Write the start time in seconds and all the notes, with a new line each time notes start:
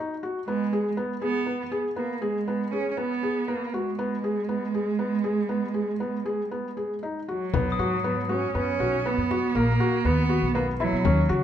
0.00 D#4
0.23 F#4
0.47 G#3 B3
0.73 G#4
0.97 B3
1.22 B3 G#4
1.46 B3
1.72 G#4
1.96 A#3 B3
2.22 G#3 G#4
2.48 B3
2.71 C#4 G#4
2.91 C#4
2.97 B3
3.23 G#4
3.48 A#3 B3
3.73 G#3 F#4
3.99 B3
4.24 G#4
4.49 B3
4.74 G#4
4.99 B3
5.24 G#4
5.49 B3
5.74 G#4
6.00 B3
6.25 G#4
6.51 B3
6.77 G#4
7.03 D#4
7.28 F#3 F#4
7.54 B1 B3, frame drum
7.72 D#6
7.79 G#2 F#4
8.04 B3
8.29 C#4 F#4
8.55 F#2 B3 C#4
8.80 B1 F#4, frame drum
9.05 B3
9.18 F#2
9.31 F#4, frame drum
9.55 A#1 A#3
9.80 F#4, frame drum
10.05 D#2 B3, frame drum
10.29 F#4
10.42 B1
10.55 A#3 B3, frame drum
10.80 F#3 E4
10.93 B2
11.05 D#2 C#4, frame drum
11.29 C#3 F#4